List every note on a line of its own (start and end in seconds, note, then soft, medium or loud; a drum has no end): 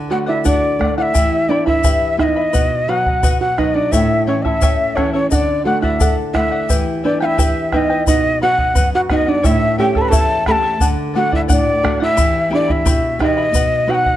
0.00 1.11 D3 medium
0.00 0.10 F#5 medium
0.10 0.44 A3 medium
0.10 0.19 F#4 medium
0.10 0.27 A4 medium
0.10 0.27 D5 medium
0.10 0.25 F#5 medium
0.10 0.17 F#5 medium
0.26 0.45 E4 medium
0.26 0.44 D5 medium
0.26 0.44 E5 medium
0.26 0.44 F#5 medium
0.45 0.94 D4 medium
0.45 0.79 F#4 medium
0.45 0.78 A4 medium
0.45 0.79 D5 medium
0.45 0.95 D5 medium
0.45 0.80 F#5 medium
0.45 bombo low medium
0.45 shaker medium
0.79 1.14 A3 medium
0.79 0.97 A4 medium
0.79 0.98 D5 medium
0.79 0.97 F#5 medium
0.79 bombo rim soft
0.79 bombo low medium
0.98 1.47 E4 medium
0.98 1.14 D5 soft
0.98 1.03 F#5 medium
0.98 1.15 F#5 medium
1.02 1.51 E5 loud
1.14 2.50 E3 medium
1.14 1.49 E4 medium
1.14 1.49 G4 medium
1.14 1.50 E5 medium
1.14 1.49 G5 medium
1.14 1.50 B5 medium
1.14 bombo low medium
1.14 shaker loud
1.49 1.83 B3 soft
1.49 1.67 D4 medium
1.49 1.66 E4 medium
1.49 1.66 D5 medium
1.49 1.66 E5 medium
1.49 1.67 G5 medium
1.49 1.65 B5 medium
1.66 2.16 E4 medium
1.66 1.83 E4 soft
1.66 1.83 E5 soft
1.66 2.16 E5 medium
1.66 1.83 B5 medium
1.66 bombo low medium
1.84 2.18 E4 medium
1.84 2.19 G4 medium
1.84 2.18 B4 medium
1.84 2.18 E5 medium
1.84 2.17 G5 medium
1.84 2.19 B5 medium
1.84 bombo low medium
1.84 shaker loud
2.17 2.52 B3 medium
2.17 2.85 D#4 medium
2.17 2.36 E4 medium
2.17 2.35 E5 medium
2.17 2.24 E5 medium
2.17 2.36 G5 medium
2.17 2.35 B5 medium
2.17 bombo rim soft
2.17 bombo low soft
2.23 2.91 D#5 medium
2.36 2.52 E4 soft
2.36 2.54 E5 soft
2.36 2.54 B5 medium
2.53 3.88 B2 medium
2.53 2.87 B4 medium
2.53 2.88 D#5 medium
2.53 2.89 F#5 medium
2.53 bombo low medium
2.53 shaker medium
2.88 3.22 F#3 medium
2.88 3.40 F#4 medium
2.88 3.06 B4 medium
2.88 3.07 D#5 medium
2.88 3.40 F#5 medium
2.88 3.06 F#5 medium
3.06 3.22 D#5 soft
3.06 3.23 F#5 medium
3.06 bombo low medium
3.23 3.57 F#4 medium
3.23 3.57 B4 medium
3.23 3.58 D#5 medium
3.23 3.58 F#5 medium
3.23 bombo low medium
3.23 shaker medium
3.40 3.57 F#4 medium
3.40 3.60 F#5 medium
3.58 3.92 F#3 medium
3.58 3.76 D#4 medium
3.58 3.76 B4 medium
3.58 3.76 D#5 medium
3.58 3.75 D#5 medium
3.58 3.74 F#5 medium
3.58 bombo rim soft
3.58 bombo low soft
3.74 3.93 D4 medium
3.74 3.93 D5 medium
3.74 3.93 D#5 soft
3.74 3.92 F#5 soft
3.92 5.28 A2 medium
3.92 4.28 E4 medium
3.92 4.27 E4 medium
3.92 4.27 A4 medium
3.92 4.27 C#5 medium
3.92 4.26 E5 loud
3.92 4.28 E5 medium
3.92 4.26 G5 medium
3.92 bombo low medium
3.92 shaker medium
4.27 4.61 E3 medium
4.27 4.44 C#4 medium
4.27 4.45 E4 medium
4.27 4.44 A4 medium
4.27 4.45 C#5 medium
4.27 4.43 E5 medium
4.27 4.45 G5 medium
4.43 4.97 E4 medium
4.43 4.61 E4 soft
4.43 4.62 A4 medium
4.43 4.97 E5 medium
4.43 4.62 E5 medium
4.43 bombo low medium
4.62 4.96 C#4 medium
4.62 4.95 E4 medium
4.62 4.96 A4 medium
4.62 4.97 C#5 medium
4.62 4.96 E5 medium
4.62 4.95 G5 medium
4.62 bombo low medium
4.62 shaker medium
4.96 5.31 E3 medium
4.96 5.14 C#4 medium
4.96 5.14 E4 medium
4.96 5.13 A4 medium
4.96 5.13 C#5 medium
4.96 5.12 E5 medium
4.96 5.14 G5 medium
4.96 bombo rim medium
4.96 bombo low medium
5.13 5.31 C#4 medium
5.13 5.32 E4 soft
5.13 5.30 A4 soft
5.13 5.29 C#5 medium
5.13 5.31 E5 medium
5.30 6.65 D3 medium
5.30 5.64 D4 medium
5.30 5.64 A4 medium
5.30 5.65 D5 medium
5.30 5.35 D#5 medium
5.30 5.66 F#5 medium
5.30 bombo low medium
5.30 shaker medium
5.34 5.63 D5 medium
5.65 5.99 A3 medium
5.65 5.82 F#4 medium
5.65 5.83 A4 medium
5.65 5.83 D5 medium
5.65 5.81 F#5 medium
5.82 6.15 E4 medium
5.82 5.99 D5 medium
5.82 6.15 E5 medium
5.82 6.00 F#5 medium
5.82 bombo low medium
6.00 6.33 A4 medium
6.00 6.34 A4 medium
6.00 6.34 D5 medium
6.00 6.35 F#5 loud
6.00 bombo low medium
6.00 shaker loud
6.33 6.69 A3 medium
6.33 7.21 E4 medium
6.33 6.52 A4 medium
6.33 6.51 D5 medium
6.33 6.74 E5 medium
6.33 6.50 F#5 medium
6.33 bombo rim medium
6.33 bombo low medium
6.51 6.69 D5 soft
6.51 6.69 F#5 medium
6.69 8.03 E3 medium
6.69 7.03 E4 medium
6.69 7.04 G4 medium
6.69 7.04 B4 medium
6.69 7.03 E5 medium
6.69 7.04 G5 medium
6.69 bombo low medium
6.69 shaker loud
7.04 7.38 B3 medium
7.04 7.20 D4 medium
7.04 7.21 E4 medium
7.04 7.20 B4 medium
7.04 7.20 D5 medium
7.04 7.21 E5 medium
7.04 7.19 G5 medium
7.20 7.37 E4 soft
7.20 7.70 E4 medium
7.20 7.37 B4 medium
7.20 7.26 F#5 medium
7.20 7.38 G5 medium
7.25 7.72 E5 loud
7.38 7.72 E4 medium
7.38 7.72 G4 medium
7.38 7.72 B4 medium
7.38 7.71 E5 medium
7.38 7.72 G5 loud
7.38 bombo low medium
7.38 shaker loud
7.72 8.07 B3 medium
7.72 8.07 D#4 medium
7.72 7.90 E4 medium
7.72 7.89 B4 medium
7.72 8.06 D#5 medium
7.72 7.77 E5 medium
7.72 7.90 E5 medium
7.72 7.88 G5 medium
7.72 bombo rim medium
7.72 bombo low soft
7.90 8.07 E4 soft
7.90 8.06 B4 medium
7.90 8.07 G5 medium
8.07 8.75 B2 medium
8.07 8.40 D#4 medium
8.07 8.40 B4 medium
8.07 8.39 D#5 loud
8.07 8.41 D#5 medium
8.07 8.42 F#5 medium
8.07 bombo low medium
8.07 shaker medium
8.41 8.97 B3 medium
8.41 8.97 D#4 soft
8.41 8.90 F#4 medium
8.41 8.98 F#4 medium
8.41 8.59 B4 medium
8.41 8.58 D#5 medium
8.41 8.90 F#5 loud
8.41 8.57 F#5 medium
8.58 8.74 D#5 soft
8.58 8.75 F#5 medium
8.58 bombo low medium
8.75 9.43 F#2 medium
8.75 9.08 B4 medium
8.75 9.09 D#5 medium
8.75 9.09 F#5 medium
8.75 bombo low medium
8.75 shaker loud
8.95 9.02 F#4 medium
8.95 9.01 F#5 loud
9.09 9.37 B3 medium
9.09 9.38 D#4 medium
9.09 9.27 D#4 medium
9.09 9.38 F#4 medium
9.09 9.27 B4 medium
9.09 9.26 D#5 medium
9.09 9.30 D#5 medium
9.09 9.25 F#5 medium
9.09 bombo rim medium
9.09 bombo low medium
9.26 9.45 D4 medium
9.26 9.48 D5 medium
9.26 9.44 D#5 soft
9.26 9.43 F#5 soft
9.43 10.11 A2 medium
9.43 9.77 E4 medium
9.43 9.79 E4 medium
9.43 9.78 A4 medium
9.43 9.78 C#5 medium
9.43 9.79 E5 medium
9.43 9.79 E5 loud
9.43 9.77 G5 medium
9.43 bombo low medium
9.43 shaker medium
9.78 10.33 A3 soft
9.78 10.34 C#4 soft
9.78 9.95 E4 medium
9.78 10.33 G4 medium
9.78 9.95 G4 medium
9.78 9.95 A4 medium
9.78 9.94 E5 medium
9.78 9.95 G5 medium
9.78 10.00 G5 medium
9.95 10.11 E4 soft
9.95 10.11 A4 medium
9.95 10.03 A4 medium
9.95 10.11 E5 medium
9.95 10.02 A5 loud
9.95 bombo low medium
10.00 10.08 B4 medium
10.00 10.10 B5 medium
10.09 10.45 E4 medium
10.09 10.47 A4 medium
10.09 10.46 A4 medium
10.09 10.46 C#5 medium
10.09 10.46 E5 medium
10.09 10.45 G5 medium
10.09 10.47 A5 loud
10.09 bombo low medium
10.09 shaker loud
10.13 10.79 E2 medium
10.46 10.74 A3 medium
10.46 10.75 C#4 medium
10.46 10.63 E4 medium
10.46 10.75 G4 medium
10.46 10.63 A4 medium
10.46 10.88 A4 medium
10.46 10.61 E5 medium
10.46 10.64 G5 medium
10.46 10.52 B5 medium
10.46 bombo rim medium
10.46 bombo low medium
10.51 10.87 A5 loud
10.63 10.81 E4 soft
10.63 10.79 A4 soft
10.63 10.80 E5 medium
10.80 11.48 D3 medium
10.80 11.12 A4 medium
10.80 11.13 D5 medium
10.80 11.14 F#5 medium
10.80 bombo low medium
10.80 shaker medium
11.14 11.70 A3 medium
11.14 11.70 D4 soft
11.14 11.70 F#4 medium
11.14 11.32 F#4 medium
11.14 11.31 A4 medium
11.14 11.31 D5 medium
11.14 11.30 F#5 medium
11.14 11.32 F#5 medium
11.31 11.41 E4 medium
11.31 11.47 D5 medium
11.31 11.41 E5 medium
11.31 11.48 F#5 medium
11.31 bombo low medium
11.48 12.16 A2 medium
11.48 11.97 D4 medium
11.48 11.82 A4 medium
11.48 11.83 D5 medium
11.48 11.83 F#5 medium
11.48 bombo low medium
11.48 shaker medium
11.52 11.98 D5 loud
11.83 12.11 A3 medium
11.83 12.11 D4 medium
11.83 12.11 F#4 medium
11.83 12.01 A4 medium
11.83 12.00 D5 medium
11.83 11.99 F#5 medium
11.83 bombo rim medium
11.83 bombo low medium
12.00 12.49 E4 medium
12.00 12.16 D5 soft
12.00 12.50 E5 loud
12.00 12.17 F#5 medium
12.16 12.84 E3 medium
12.16 12.50 E4 medium
12.16 12.51 G4 medium
12.16 12.50 E5 medium
12.16 12.49 G5 medium
12.16 12.51 B5 medium
12.16 bombo low medium
12.16 shaker loud
12.50 13.05 B3 soft
12.50 12.69 D4 medium
12.50 13.05 E4 soft
12.50 12.68 E4 medium
12.50 13.06 G4 medium
12.50 12.67 E5 medium
12.50 12.68 G5 medium
12.50 12.66 B5 medium
12.54 12.73 D5 medium
12.68 12.85 E4 soft
12.68 13.21 E4 medium
12.68 12.85 E5 medium
12.68 13.21 E5 medium
12.68 12.85 B5 medium
12.68 bombo low medium
12.85 13.51 B2 medium
12.85 13.20 E4 medium
12.85 13.20 G4 medium
12.85 13.20 E5 medium
12.85 13.19 G5 medium
12.85 13.20 B5 medium
12.85 bombo low medium
12.85 shaker loud
13.19 13.47 E3 medium
13.19 13.47 B3 medium
13.19 13.85 D#4 medium
13.19 13.37 E4 medium
13.19 13.47 G4 medium
13.19 13.92 D#5 medium
13.19 13.37 E5 medium
13.19 13.37 G5 medium
13.19 13.36 B5 medium
13.19 bombo rim medium
13.19 bombo low medium
13.37 13.54 E4 soft
13.37 13.55 E5 soft
13.37 13.54 B5 medium
13.52 14.16 B2 medium
13.52 13.86 B4 medium
13.52 13.87 D#5 medium
13.52 13.88 F#5 medium
13.52 bombo low medium
13.52 shaker loud
13.87 14.16 B3 soft
13.87 14.16 D#4 soft
13.87 14.16 F#4 medium
13.87 14.05 B4 medium
13.87 14.05 D#5 medium
13.87 14.05 F#5 medium
13.87 13.96 G5 medium
13.95 14.16 F#5 loud
14.06 14.16 D#5 soft
14.06 14.16 F#5 medium
14.06 bombo low medium